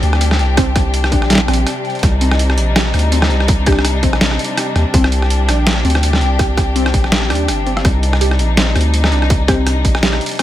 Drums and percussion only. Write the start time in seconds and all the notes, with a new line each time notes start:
0.03 closed hi-hat
0.13 cross-stick
0.21 closed hi-hat
0.31 cross-stick, snare
0.39 closed hi-hat
0.57 kick, cross-stick, closed hi-hat
0.76 kick, cross-stick, closed hi-hat
0.94 closed hi-hat
1.04 cross-stick
1.12 kick, closed hi-hat
1.22 cross-stick
1.30 snare, closed hi-hat
1.33 snare
1.35 snare
1.38 snare
1.48 cross-stick, closed hi-hat
1.53 closed hi-hat
1.67 cross-stick, closed hi-hat
1.85 closed hi-hat
1.90 closed hi-hat
1.95 closed hi-hat
1.99 kick, cross-stick, closed hi-hat
2.03 closed hi-hat
2.21 closed hi-hat
2.31 cross-stick
2.39 closed hi-hat
2.50 cross-stick
2.58 closed hi-hat
2.76 cross-stick, snare, closed hi-hat
2.94 cross-stick, closed hi-hat
2.99 closed hi-hat
3.12 closed hi-hat
3.22 cross-stick, snare
3.30 closed hi-hat
3.40 cross-stick
3.48 kick, closed hi-hat
3.66 kick, cross-stick, closed hi-hat
3.72 cross-stick
3.79 cross-stick
3.85 cross-stick, closed hi-hat
4.03 kick, closed hi-hat
4.13 cross-stick
4.21 snare, closed hi-hat
4.31 cross-stick
4.39 closed hi-hat
4.44 closed hi-hat
4.57 cross-stick, closed hi-hat
4.76 cross-stick, closed hi-hat
4.94 kick, closed hi-hat
5.04 cross-stick
5.12 closed hi-hat
5.22 cross-stick
5.30 closed hi-hat
5.49 cross-stick, closed hi-hat
5.67 cross-stick, snare, closed hi-hat
5.85 closed hi-hat
5.90 closed hi-hat
5.95 cross-stick
6.03 closed hi-hat
6.13 cross-stick, snare
6.21 closed hi-hat
6.39 kick, cross-stick, closed hi-hat
6.57 kick, cross-stick, closed hi-hat
6.76 closed hi-hat
6.86 cross-stick
6.94 kick, closed hi-hat
7.04 cross-stick
7.12 snare, closed hi-hat
7.30 cross-stick, closed hi-hat
7.35 closed hi-hat
7.48 cross-stick, closed hi-hat
7.67 closed hi-hat
7.77 cross-stick
7.85 kick, cross-stick, closed hi-hat
8.03 closed hi-hat
8.13 cross-stick
8.21 closed hi-hat
8.31 cross-stick
8.39 closed hi-hat
8.57 cross-stick, snare, closed hi-hat
8.76 cross-stick, closed hi-hat
8.81 closed hi-hat
8.94 closed hi-hat
9.04 cross-stick, snare
9.12 closed hi-hat
9.22 cross-stick
9.30 kick, closed hi-hat
9.48 kick, cross-stick, closed hi-hat
9.67 cross-stick, closed hi-hat
9.85 kick, closed hi-hat
9.95 cross-stick
10.03 snare, closed hi-hat
10.13 cross-stick
10.21 closed hi-hat
10.26 closed hi-hat
10.29 closed hi-hat
10.31 closed hi-hat
10.33 closed hi-hat
10.35 closed hi-hat
10.37 cross-stick, closed hi-hat
10.39 closed hi-hat